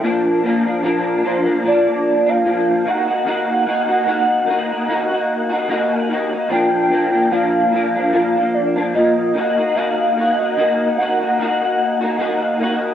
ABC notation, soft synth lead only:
X:1
M:4/4
L:1/16
Q:"Swing 16ths" 1/4=74
K:Bb
V:1 name="Soft synth lead"
z6 c2 d3 f3 _g2 | _g12 z4 | g4 f4 f2 d2 e4 | f3 e3 _g8 z2 |]